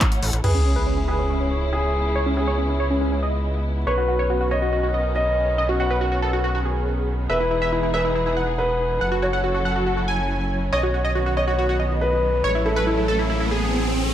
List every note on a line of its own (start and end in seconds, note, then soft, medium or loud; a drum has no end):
0.00 0.42 A3 medium
0.00 0.42 E4 medium
0.00 0.42 C#5 medium
0.00 0.42 F#5 medium
0.00 kick loud
0.00 clap loud
0.00 closed hi-hat medium
0.12 closed hi-hat medium
0.22 0.30 A1 medium
0.22 open hi-hat medium
0.33 0.41 A1 medium
0.33 closed hi-hat medium
0.44 3.85 C#2 medium
0.44 3.83 C#3 medium
0.44 3.83 G#3 medium
0.44 8.97 B3 medium
0.44 3.83 E4 medium
0.44 1.00 G#4 medium
0.44 0.52 B4 medium
0.44 crash medium
0.44 sub drop medium
0.55 0.63 C#4 medium
0.65 0.74 C#4 medium
0.76 0.84 B4 medium
0.87 0.95 C#4 medium
0.97 1.06 C#4 medium
1.08 1.64 G#4 medium
1.08 1.16 B4 medium
1.19 1.27 C#4 medium
1.29 1.38 C#4 medium
1.40 1.48 C#4 medium
1.51 2.07 C#5 medium
1.73 2.28 G#4 medium
2.16 2.24 C#5 loud
2.26 2.34 C#4 medium
2.37 2.45 C#4 medium
2.37 3.78 G#4 medium
2.48 2.56 C#5 medium
2.58 2.66 C#4 medium
2.69 2.77 C#4 medium
2.80 2.88 C#5 medium
2.91 2.99 C#4 medium
3.01 3.09 C#4 medium
3.12 3.20 C#4 medium
3.23 3.78 D#5 medium
3.87 7.28 B1 medium
3.87 7.26 D#3 medium
3.87 7.26 C#4 medium
3.87 4.43 B4 medium
3.87 3.95 C#5 medium
3.98 4.06 F#4 medium
4.08 4.16 F#4 medium
4.19 4.27 C#5 medium
4.30 4.38 F#4 medium
4.41 4.49 F#4 medium
4.51 4.59 C#5 medium
4.51 5.07 D#5 medium
4.62 4.70 F#4 medium
4.73 4.81 F#4 medium
4.83 4.91 F#4 medium
4.94 5.50 D#5 medium
5.16 5.71 D#5 medium
5.58 5.66 D#5 medium
5.69 5.77 F#4 medium
5.80 5.88 F#4 medium
5.80 7.21 F#5 medium
5.91 5.99 B4 medium
6.01 6.09 F#4 medium
6.12 6.20 F#4 medium
6.22 6.31 A4 medium
6.33 6.41 F#4 medium
6.44 6.52 F#4 medium
6.55 6.63 F#4 medium
6.65 7.21 G#4 medium
7.30 8.99 E1 medium
7.30 9.00 E3 medium
7.30 9.00 D#4 medium
7.30 9.00 G#4 medium
7.30 7.86 B4 medium
7.30 7.38 E5 medium
7.40 7.48 E4 medium
7.51 7.59 E4 medium
7.62 7.70 E5 medium
7.72 7.81 E4 medium
7.83 7.91 E4 medium
7.94 8.50 B4 medium
7.94 8.02 E5 medium
8.05 8.13 E4 medium
8.15 8.24 E4 medium
8.26 8.34 E4 medium
8.37 8.93 F#5 medium
8.58 9.14 B4 medium
9.01 10.71 F#1 medium
9.01 10.71 F#3 medium
9.01 12.41 C#4 medium
9.01 10.71 E4 medium
9.01 10.71 A4 medium
9.01 9.09 F#5 medium
9.12 9.20 F#4 medium
9.22 9.31 F#4 medium
9.22 10.64 C#5 medium
9.33 9.41 F#5 medium
9.44 9.52 F#4 medium
9.54 9.63 F#4 medium
9.65 9.73 F#5 medium
9.76 9.84 F#4 medium
9.86 9.95 F#4 medium
9.97 10.06 F#4 medium
10.08 10.64 G#5 medium
10.73 12.42 B1 medium
10.73 12.42 D#3 medium
10.73 12.42 B3 medium
10.73 11.28 C#5 medium
10.73 10.81 D#5 medium
10.73 riser medium
10.83 10.91 F#4 medium
10.94 11.02 F#4 medium
11.05 11.13 D#5 medium
11.15 11.24 F#4 medium
11.26 11.34 F#4 medium
11.37 11.93 C#5 medium
11.37 11.45 D#5 medium
11.48 11.56 F#4 medium
11.59 11.67 F#4 medium
11.69 11.77 F#4 medium
11.80 12.35 D#5 medium
12.01 12.57 B4 medium
12.44 14.13 A1 medium
12.44 14.14 F#3 medium
12.44 14.14 A3 medium
12.44 14.14 C#4 medium
12.44 12.52 C#5 medium
12.55 12.63 E4 medium
12.66 12.74 E4 medium
12.66 14.07 A4 medium
12.76 12.84 B4 medium
12.87 12.95 E4 medium
12.97 13.06 E4 medium
13.08 13.16 A4 medium
13.19 13.27 E4 medium
13.30 13.38 E4 medium
13.41 13.49 E4 medium
13.51 14.07 G#4 medium